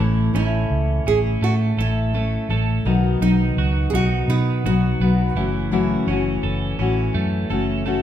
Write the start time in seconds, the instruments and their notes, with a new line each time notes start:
0.00 fingered electric bass A1, steel-string acoustic guitar A2 E3 A3 C#4 E4 A4
0.34 fingered electric bass A1, steel-string acoustic guitar A3 C#4 E4 A4
0.70 fingered electric bass C#2
1.06 fingered electric bass A1, steel-string acoustic guitar A3 C#4 E4, nylon-string guitar G#4
1.42 fingered electric bass A2, clean electric guitar A3, nylon-string guitar F#4
1.77 fingered electric bass A1, steel-string acoustic guitar A3 C#4 E4 A4
2.14 steel-string acoustic guitar A3 C#4 E4 A4
2.49 fingered electric bass A1, steel-string acoustic guitar A3 C#4 E4 A4
2.85 fingered electric bass B1, steel-string acoustic guitar B2 F#3 B3 D#4 F#4, clean electric guitar D#3
3.21 fingered electric bass B1, steel-string acoustic guitar F#3 B3 D#4 F#4
3.57 fingered electric bass C#2, clean electric guitar F#4
3.90 fingered electric bass B1, steel-string acoustic guitar F#3 B3 D#4, nylon-string guitar G#4
3.94 steel-string acoustic guitar F#4
4.28 fingered electric bass B2, clean electric guitar B3, nylon-string guitar D#4
4.64 fingered electric bass B1, steel-string acoustic guitar F#3 B3 D#4 F#4
5.00 fingered electric bass B1, steel-string acoustic guitar F#3 B3 D#4 F#4
5.35 fingered electric bass F#1, steel-string acoustic guitar E3 A3 C#4 F#4
5.71 steel-string acoustic guitar F#2 C#3 E3 A3 C#4 F#4
6.07 fingered electric bass F#1, steel-string acoustic guitar E3 A3 C#4 F#4
6.43 fingered electric bass F#1, clean electric guitar A4
6.79 fingered electric bass A1, steel-string acoustic guitar E3 A3 C#4 F#4
7.14 fingered electric bass F#2, clean electric guitar A3
7.49 fingered electric bass F#1, steel-string acoustic guitar E3 A3 C#4 F#4, clean electric guitar A4
7.86 steel-string acoustic guitar E3 A3 C#4 F#4